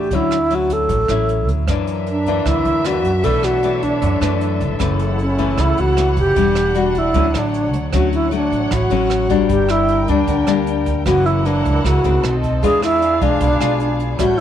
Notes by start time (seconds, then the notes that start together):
Already playing: G4
0.11 D2 D3 F#3 C#4 E4, kick, closed hi-hat
0.15 E4
0.31 cross-stick, closed hi-hat
0.50 F#3 C#4 E4, closed hi-hat
0.55 F#4
0.69 A4, kick, closed hi-hat
0.89 A1 A2, kick, closed hi-hat
1.08 A1 F#3 C#4 E4, cross-stick, closed hi-hat
1.29 closed hi-hat
1.48 D2, kick, closed hi-hat
1.67 F#2 E3 A#3 D4 A#4 E5, kick, cross-stick, closed hi-hat
1.87 closed hi-hat
2.06 closed hi-hat
2.11 D4
2.26 E3 A#3 D4, kick, closed hi-hat
2.45 D2 F#2 E4, kick, cross-stick, closed hi-hat
2.65 D2, closed hi-hat
2.85 E3 A#3 D4 F#4, cross-stick, closed hi-hat
3.04 F#2, kick, closed hi-hat
3.24 B1 B2 E3 A3 D4 A4 C#5, kick, closed hi-hat
3.43 F#4, cross-stick, closed hi-hat
3.63 E3 A3 D4, closed hi-hat
3.82 D4, kick, closed hi-hat
4.02 F#2, kick, closed hi-hat
4.21 F#2 E3 A3 D4, cross-stick, closed hi-hat
4.41 closed hi-hat
4.60 G1, kick, closed hi-hat
4.79 F#1 F#2 E3 A3 C#4 E4 F#5, kick, cross-stick, closed hi-hat
4.99 closed hi-hat
5.19 C#4, closed hi-hat
5.38 E3 A3 C#4, kick, closed hi-hat
5.58 C#2 C#3 E4, kick, cross-stick, closed hi-hat
5.77 C#2 F#4, closed hi-hat
5.97 E3 A3 C#4, cross-stick, closed hi-hat
6.17 F#1 G4, kick, closed hi-hat
6.36 E1 E3 G3 D4, kick, closed hi-hat
6.55 cross-stick, closed hi-hat
6.75 G3 D4 F#4, closed hi-hat
6.95 E4, kick, closed hi-hat
7.14 D2 D3 F#3 A3 C#4 C#5, kick, closed hi-hat
7.34 A1 F#3 A3, cross-stick, closed hi-hat
7.39 D4
7.54 closed hi-hat
7.73 D2, kick, closed hi-hat
7.93 D2 D3 F#3 A3 C#4 F#4 C#5 F#5, kick, cross-stick, closed hi-hat
8.13 E4, closed hi-hat
8.31 F#3 A3 D4, closed hi-hat
8.51 A1, closed hi-hat
8.71 A1 A2 F#4, kick, cross-stick, closed hi-hat
8.90 A1 F#3 A3 C#4, closed hi-hat
9.10 cross-stick, closed hi-hat
9.30 G3 A#3 D4, kick, closed hi-hat
9.46 G1 G2 A#4 G5, kick, closed hi-hat
9.51 G4
9.69 E4, cross-stick, closed hi-hat
9.88 closed hi-hat
10.08 D2 G3 A#3 D4, closed hi-hat
10.27 D2 D3, kick, closed hi-hat
10.47 D2 G3 A#3 D4, cross-stick, closed hi-hat
10.67 closed hi-hat
10.86 kick, closed hi-hat
11.06 F#1 F#2 E3 A#3 C#4 E4 F#4 A#4 F#5, kick, cross-stick, closed hi-hat
11.26 E4, closed hi-hat
11.45 E3 A#3 D4, closed hi-hat
11.65 C#2, closed hi-hat
11.85 C#2 C#3 F#4, kick, cross-stick, closed hi-hat
12.04 C#2 D#3 A3 C4, closed hi-hat
12.23 B1 C4 A4 D#5, cross-stick, closed hi-hat
12.43 kick, closed hi-hat
12.62 E2 E3 G#3 D4 F4 G#4 F5, kick, closed hi-hat
12.82 E4, cross-stick, closed hi-hat
13.02 closed hi-hat
13.21 B1 G#3 D4 F4, kick, closed hi-hat
13.40 B1 B2, kick, closed hi-hat
13.61 B1 G#3 D4 F4, cross-stick, closed hi-hat
13.80 closed hi-hat
14.00 closed hi-hat
14.19 A1 A2 G3 C#4 E4 F#4 A4 C#5 G6, kick, cross-stick, closed hi-hat